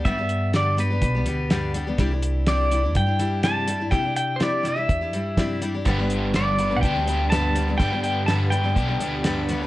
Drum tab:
HH |xxxxxxxx|xxxxxxxx|xxxxxxxx|xxxxxxxx|
SD |--o---o-|--o---o-|--o---o-|--o---o-|
BD |o---o---|o---o---|o---o-o-|o---o---|

HH |xxxxxxxx|
SD |--o---o-|
BD |o---o---|